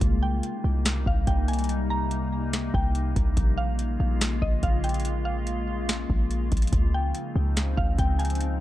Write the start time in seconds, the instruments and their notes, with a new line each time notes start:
Already playing: ambient pad A#3
0.01 808-style bass C2, ambient pad C3 G3 D#4, kick, closed hi-hat
0.23 synth pluck G5
0.43 closed hi-hat
0.64 808-style bass C2
0.85 snare, closed hi-hat
1.06 808-style bass C2, synth pluck F5, kick
1.27 808-style bass C2, synth pluck G5, kick, closed hi-hat
1.48 synth pluck G#5, closed hi-hat
1.53 closed hi-hat
1.59 closed hi-hat
1.64 closed hi-hat
1.69 closed hi-hat
1.90 synth pluck A#5
2.11 closed hi-hat
2.53 snare, closed hi-hat
2.74 808-style bass C2, synth pluck G5, kick
2.95 closed hi-hat
3.16 808-style bass C2, kick, closed hi-hat
3.37 808-style bass A#1, ambient pad C#3 G#3 F4, kick, closed hi-hat
3.58 synth pluck F5
3.79 closed hi-hat
4.00 808-style bass A#1
4.21 snare, closed hi-hat
4.42 808-style bass A#1, synth pluck D#5, kick
4.63 808-style bass A#1, synth pluck F5, kick, closed hi-hat
4.84 synth pluck G5, closed hi-hat
4.89 closed hi-hat
4.94 closed hi-hat
5.00 closed hi-hat
5.05 closed hi-hat
5.25 synth pluck F5
5.47 closed hi-hat
5.89 snare, closed hi-hat
6.10 808-style bass A#1, kick
6.31 closed hi-hat
6.52 808-style bass A#1, kick, closed hi-hat
6.57 closed hi-hat
6.62 closed hi-hat
6.67 closed hi-hat
6.73 808-style bass C#2, ambient pad F3 C4 D#4, kick, closed hi-hat
6.94 synth pluck G5
7.15 closed hi-hat
7.36 808-style bass C#2
7.57 snare, closed hi-hat
7.77 808-style bass C#2, synth pluck F5, kick
7.99 808-style bass C#2, synth pluck G5, kick, closed hi-hat
8.19 synth pluck G#5, closed hi-hat
8.25 closed hi-hat
8.30 closed hi-hat
8.35 closed hi-hat
8.41 closed hi-hat